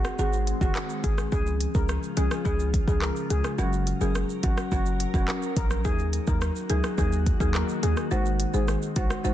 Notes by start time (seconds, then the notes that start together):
Already playing: D#3 G#3 C4 F#4
0.05 cross-stick, shaker
0.19 G#1 D#3 C4 F#4 G#4, shaker
0.33 shaker
0.47 closed hi-hat, shaker
0.61 F#1 D#3 C4 F#4 G#4, kick, shaker
0.76 cross-stick, clap, shaker
0.90 shaker
1.04 G#1 G#4, kick, closed hi-hat, shaker
1.18 cross-stick, shaker
1.32 C#2 C#3 F3 C#4 F4 G#4, kick, shaker
1.46 shaker
1.61 closed hi-hat, shaker
1.74 C#2 F3 C#4 G#4 A#4, kick, shaker
1.89 cross-stick, shaker
2.03 shaker
2.17 C2 F3 C#4 G#4, closed hi-hat, shaker
2.31 cross-stick, shaker
2.45 C#2 F3 C#4 G#4, kick, shaker
2.60 shaker
2.74 kick, closed hi-hat, shaker
2.88 C#2 F3 C#4 G#4, kick, shaker
3.02 A#4, cross-stick, clap, shaker
3.16 shaker
3.30 C#2 G#4, closed hi-hat, shaker
3.44 cross-stick, shaker
3.58 F#1 F#3 C#4 F#4 A#4, shaker
3.73 shaker
3.87 closed hi-hat, shaker
4.01 F#1 F#3 C#4 G#4 A#4, shaker
4.15 cross-stick, shaker
4.29 shaker
4.43 G#1 F#3 C#4 F#4 A#4, kick, closed hi-hat, shaker
4.58 cross-stick, shaker
4.72 F#1 F#3 C#4 F#4 A#4, kick, shaker
4.86 shaker
5.00 closed hi-hat, shaker
5.14 F1 F#3 C#4 F#4 A#4, kick, shaker
5.28 cross-stick, clap, shaker
5.42 shaker
5.57 A#1 A#4, kick, closed hi-hat, shaker
5.70 cross-stick, shaker
5.85 D#2 D#3 F#3 A#3 D#4 F#4 G#4 A#4, kick, shaker
5.99 shaker
6.13 closed hi-hat, shaker
6.27 D#2 F#3 D#4 A#4, kick, shaker
6.41 cross-stick, shaker
6.56 shaker
6.70 C#2 F#3 D#4 G#4 A#4, closed hi-hat, shaker
6.84 cross-stick, shaker
6.98 D#2 F#3 D#4 G#4 A#4, kick, shaker
7.12 shaker
7.26 kick, closed hi-hat, shaker
7.40 D#2 F#3 D#4 G#4 A#4, kick, shaker
7.55 A#4, cross-stick, clap, shaker
7.69 shaker
7.83 D#2 G#4, closed hi-hat, shaker
7.97 cross-stick, shaker
8.11 G#1 G#3 C4 D#4 F#4 C5, shaker
8.26 shaker
8.40 closed hi-hat, shaker
8.54 G#1 G#3 D#4 G#4 C5, shaker
8.68 cross-stick, shaker
8.82 shaker
8.96 A#1 G#3 D#4 F#4 C5, kick, closed hi-hat, shaker
9.10 cross-stick, shaker
9.24 G#1 G#3 D#4 F#4 C5, shaker